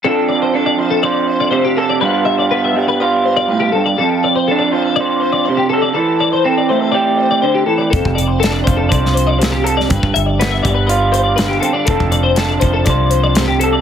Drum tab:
HH |----------------|----------------|----------------|----------------|
SD |----------------|----------------|----------------|----------------|
BD |----------------|----------------|----------------|----------------|

HH |x-x-x-x-x-x-x-x-|x-x-x-x-x-x-x-x-|x-x-x-x-x-x-x-x-|
SD |----o----o--o--o|----o-------o---|----o-------o---|
BD |oo----o-o-------|oo----o---------|oo----o-o-------|